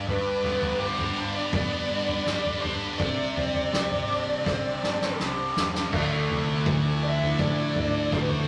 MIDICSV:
0, 0, Header, 1, 6, 480
1, 0, Start_track
1, 0, Tempo, 731707
1, 44, Time_signature, 4, 2, 24, 8
1, 5561, End_track
2, 0, Start_track
2, 0, Title_t, "Lead electric guitar"
2, 0, Program_c, 0, 29
2, 62, Note_on_c, 0, 71, 84
2, 507, Note_off_c, 0, 71, 0
2, 527, Note_on_c, 0, 72, 82
2, 860, Note_off_c, 0, 72, 0
2, 884, Note_on_c, 0, 74, 87
2, 917, Note_off_c, 0, 74, 0
2, 1010, Note_on_c, 0, 74, 97
2, 1713, Note_off_c, 0, 74, 0
2, 1716, Note_on_c, 0, 72, 78
2, 1781, Note_off_c, 0, 72, 0
2, 1959, Note_on_c, 0, 74, 92
2, 3376, Note_off_c, 0, 74, 0
2, 4612, Note_on_c, 0, 76, 78
2, 4849, Note_on_c, 0, 74, 89
2, 4855, Note_off_c, 0, 76, 0
2, 5341, Note_off_c, 0, 74, 0
2, 5344, Note_on_c, 0, 72, 81
2, 5378, Note_off_c, 0, 72, 0
2, 5392, Note_on_c, 0, 71, 73
2, 5428, Note_off_c, 0, 71, 0
2, 5447, Note_on_c, 0, 72, 82
2, 5561, Note_off_c, 0, 72, 0
2, 5561, End_track
3, 0, Start_track
3, 0, Title_t, "String section"
3, 0, Program_c, 1, 48
3, 0, Note_on_c, 1, 55, 70
3, 0, Note_on_c, 1, 62, 60
3, 0, Note_on_c, 1, 74, 77
3, 0, Note_on_c, 1, 83, 64
3, 1937, Note_off_c, 1, 83, 0
3, 1973, Note_on_c, 1, 60, 65
3, 1981, Note_on_c, 1, 72, 61
3, 3857, Note_off_c, 1, 55, 0
3, 3869, Note_off_c, 1, 74, 0
3, 3870, Note_off_c, 1, 60, 0
3, 3870, Note_off_c, 1, 62, 0
3, 3874, Note_off_c, 1, 72, 0
3, 3900, Note_on_c, 1, 74, 83
3, 3905, Note_on_c, 1, 64, 67
3, 3907, Note_on_c, 1, 62, 64
3, 3908, Note_on_c, 1, 53, 69
3, 3908, Note_on_c, 1, 69, 66
3, 5561, Note_off_c, 1, 53, 0
3, 5561, Note_off_c, 1, 62, 0
3, 5561, Note_off_c, 1, 64, 0
3, 5561, Note_off_c, 1, 69, 0
3, 5561, Note_off_c, 1, 74, 0
3, 5561, End_track
4, 0, Start_track
4, 0, Title_t, "Distorted electric guitar"
4, 0, Program_c, 2, 30
4, 0, Note_on_c, 2, 62, 75
4, 51, Note_on_c, 2, 43, 66
4, 291, Note_off_c, 2, 62, 0
4, 294, Note_on_c, 2, 59, 59
4, 519, Note_on_c, 2, 67, 68
4, 768, Note_on_c, 2, 62, 64
4, 1011, Note_off_c, 2, 59, 0
4, 1019, Note_on_c, 2, 59, 78
4, 1240, Note_off_c, 2, 62, 0
4, 1243, Note_on_c, 2, 62, 64
4, 1247, Note_off_c, 2, 43, 0
4, 1488, Note_on_c, 2, 55, 67
4, 1721, Note_off_c, 2, 67, 0
4, 1728, Note_off_c, 2, 62, 0
4, 1731, Note_on_c, 2, 62, 65
4, 1962, Note_on_c, 2, 48, 68
4, 1966, Note_off_c, 2, 55, 0
4, 1971, Note_off_c, 2, 59, 0
4, 1982, Note_off_c, 2, 62, 0
4, 2202, Note_on_c, 2, 60, 69
4, 2444, Note_on_c, 2, 67, 66
4, 2683, Note_on_c, 2, 62, 64
4, 2920, Note_off_c, 2, 60, 0
4, 2928, Note_on_c, 2, 60, 79
4, 3157, Note_off_c, 2, 62, 0
4, 3163, Note_off_c, 2, 48, 0
4, 3165, Note_on_c, 2, 62, 64
4, 3399, Note_on_c, 2, 55, 74
4, 3632, Note_off_c, 2, 62, 0
4, 3640, Note_on_c, 2, 62, 57
4, 3644, Note_off_c, 2, 67, 0
4, 3870, Note_on_c, 2, 50, 87
4, 3882, Note_off_c, 2, 55, 0
4, 3882, Note_off_c, 2, 62, 0
4, 3885, Note_on_c, 2, 57, 83
4, 3886, Note_off_c, 2, 60, 0
4, 3898, Note_on_c, 2, 62, 96
4, 5561, Note_off_c, 2, 50, 0
4, 5561, Note_off_c, 2, 57, 0
4, 5561, Note_off_c, 2, 62, 0
4, 5561, End_track
5, 0, Start_track
5, 0, Title_t, "Picked electric bass"
5, 0, Program_c, 3, 34
5, 47, Note_on_c, 3, 31, 91
5, 241, Note_off_c, 3, 31, 0
5, 281, Note_on_c, 3, 31, 90
5, 477, Note_off_c, 3, 31, 0
5, 518, Note_on_c, 3, 31, 88
5, 911, Note_off_c, 3, 31, 0
5, 1004, Note_on_c, 3, 41, 101
5, 1199, Note_off_c, 3, 41, 0
5, 1246, Note_on_c, 3, 43, 93
5, 1440, Note_off_c, 3, 43, 0
5, 1478, Note_on_c, 3, 31, 91
5, 1675, Note_off_c, 3, 31, 0
5, 1729, Note_on_c, 3, 31, 73
5, 1922, Note_off_c, 3, 31, 0
5, 1968, Note_on_c, 3, 36, 94
5, 2162, Note_off_c, 3, 36, 0
5, 2223, Note_on_c, 3, 36, 85
5, 2410, Note_off_c, 3, 36, 0
5, 2452, Note_on_c, 3, 36, 85
5, 2839, Note_off_c, 3, 36, 0
5, 2928, Note_on_c, 3, 36, 101
5, 3122, Note_off_c, 3, 36, 0
5, 3169, Note_on_c, 3, 31, 83
5, 3362, Note_off_c, 3, 31, 0
5, 3412, Note_on_c, 3, 36, 86
5, 3604, Note_off_c, 3, 36, 0
5, 3652, Note_on_c, 3, 40, 82
5, 3844, Note_off_c, 3, 40, 0
5, 3888, Note_on_c, 3, 38, 92
5, 4099, Note_off_c, 3, 38, 0
5, 4134, Note_on_c, 3, 36, 93
5, 4343, Note_off_c, 3, 36, 0
5, 4368, Note_on_c, 3, 38, 89
5, 4791, Note_off_c, 3, 38, 0
5, 4849, Note_on_c, 3, 45, 96
5, 5060, Note_off_c, 3, 45, 0
5, 5096, Note_on_c, 3, 38, 85
5, 5303, Note_off_c, 3, 38, 0
5, 5327, Note_on_c, 3, 38, 88
5, 5538, Note_off_c, 3, 38, 0
5, 5561, End_track
6, 0, Start_track
6, 0, Title_t, "Drums"
6, 45, Note_on_c, 9, 43, 85
6, 110, Note_off_c, 9, 43, 0
6, 286, Note_on_c, 9, 43, 78
6, 352, Note_off_c, 9, 43, 0
6, 402, Note_on_c, 9, 43, 84
6, 468, Note_off_c, 9, 43, 0
6, 644, Note_on_c, 9, 43, 83
6, 709, Note_off_c, 9, 43, 0
6, 1002, Note_on_c, 9, 43, 82
6, 1003, Note_on_c, 9, 36, 115
6, 1068, Note_off_c, 9, 43, 0
6, 1069, Note_off_c, 9, 36, 0
6, 1362, Note_on_c, 9, 43, 79
6, 1427, Note_off_c, 9, 43, 0
6, 1485, Note_on_c, 9, 38, 75
6, 1550, Note_off_c, 9, 38, 0
6, 1608, Note_on_c, 9, 43, 73
6, 1673, Note_off_c, 9, 43, 0
6, 1729, Note_on_c, 9, 43, 82
6, 1794, Note_off_c, 9, 43, 0
6, 1964, Note_on_c, 9, 43, 87
6, 1966, Note_on_c, 9, 36, 107
6, 2030, Note_off_c, 9, 43, 0
6, 2032, Note_off_c, 9, 36, 0
6, 2205, Note_on_c, 9, 43, 80
6, 2270, Note_off_c, 9, 43, 0
6, 2327, Note_on_c, 9, 43, 87
6, 2392, Note_off_c, 9, 43, 0
6, 2449, Note_on_c, 9, 38, 89
6, 2515, Note_off_c, 9, 38, 0
6, 2569, Note_on_c, 9, 43, 78
6, 2569, Note_on_c, 9, 47, 74
6, 2634, Note_off_c, 9, 43, 0
6, 2634, Note_off_c, 9, 47, 0
6, 2928, Note_on_c, 9, 36, 112
6, 2928, Note_on_c, 9, 38, 55
6, 2993, Note_off_c, 9, 38, 0
6, 2994, Note_off_c, 9, 36, 0
6, 3171, Note_on_c, 9, 38, 73
6, 3237, Note_off_c, 9, 38, 0
6, 3290, Note_on_c, 9, 38, 61
6, 3356, Note_off_c, 9, 38, 0
6, 3409, Note_on_c, 9, 38, 69
6, 3474, Note_off_c, 9, 38, 0
6, 3651, Note_on_c, 9, 38, 88
6, 3717, Note_off_c, 9, 38, 0
6, 3772, Note_on_c, 9, 38, 73
6, 3838, Note_off_c, 9, 38, 0
6, 3889, Note_on_c, 9, 43, 81
6, 3889, Note_on_c, 9, 49, 102
6, 3890, Note_on_c, 9, 36, 100
6, 3955, Note_off_c, 9, 36, 0
6, 3955, Note_off_c, 9, 43, 0
6, 3955, Note_off_c, 9, 49, 0
6, 4129, Note_on_c, 9, 43, 83
6, 4194, Note_off_c, 9, 43, 0
6, 4370, Note_on_c, 9, 36, 117
6, 4436, Note_off_c, 9, 36, 0
6, 4731, Note_on_c, 9, 43, 66
6, 4797, Note_off_c, 9, 43, 0
6, 4849, Note_on_c, 9, 36, 111
6, 4915, Note_off_c, 9, 36, 0
6, 5087, Note_on_c, 9, 43, 83
6, 5087, Note_on_c, 9, 47, 78
6, 5153, Note_off_c, 9, 43, 0
6, 5153, Note_off_c, 9, 47, 0
6, 5328, Note_on_c, 9, 36, 106
6, 5394, Note_off_c, 9, 36, 0
6, 5446, Note_on_c, 9, 43, 79
6, 5512, Note_off_c, 9, 43, 0
6, 5561, End_track
0, 0, End_of_file